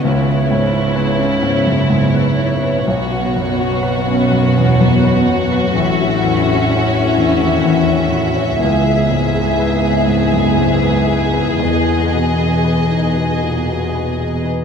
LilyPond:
<<
  \new Staff \with { instrumentName = "Violin section" } { \time 3/4 \key cis \dorian \tempo 4 = 62 cis''2.~ | cis''2. | e''2.~ | e''2. |
dis''2. | }
  \new Staff \with { instrumentName = "Violin section" } { \time 3/4 \key cis \dorian e'2. | fis'2.~ | fis'2. | gis'2.~ |
gis'2. | }
  \new Staff \with { instrumentName = "Grand piano" } { \time 3/4 \key cis \dorian cis,16 e'16 gis,16 e'16 b'16 cis'16 gis,16 fis,16 gis,16 b'16 e'16 b'16 | b,,16 fis'16 fis,16 fis'16 b'16 cis'16 fis,16 e,16 fis,16 b'16 fis'16 b'16 | a,,16 fis'16 e,16 fis'16 cis''16 e'16 e,16 dis,16 e,16 cis''16 fis'16 cis''16 | cis,16 gis'16 gis,16 gis'16 b'16 e'16 gis,16 fis,16 gis,16 b'16 gis'16 b'16 |
e,16 gis'16 b,16 gis'16 b'16 dis'16 b,16 ais,16 b,16 b'16 gis'16 b'16 | }
  \new Staff \with { instrumentName = "Harp" } { \time 3/4 \key cis \dorian <cis b b'>16 cis'16 b'16 cis'16 gis16 cis'16 b'16 cis'16 gis16 cis'16 b'16 cis'16 | b,16 cis'16 b'16 cis'16 fis16 cis'16 b'16 cis'16 fis16 cis'16 b'16 cis'16 | a,16 e'16 cis''16 e'16 e16 e'16 cis''16 e'16 e16 e'16 cis''16 e'16 | cis16 e'16 b'16 e'16 gis16 e'16 b'8 gis16 e'16 b'16 e'16 |
e16 dis'16 b'16 dis'16 b16 dis'16 b'16 dis'16 b16 dis'16 b'16 dis'16 | }
  \new Staff \with { instrumentName = "Viola section" } { \time 3/4 \key cis \dorian b2. | b2. | cis'2. | b2.~ |
b2. | }
  \new Staff \with { instrumentName = "Cello section" } { \clef bass \time 3/4 \key cis \dorian cis2. | b,2. | a,2. | cis,2. |
e,2. | }
>>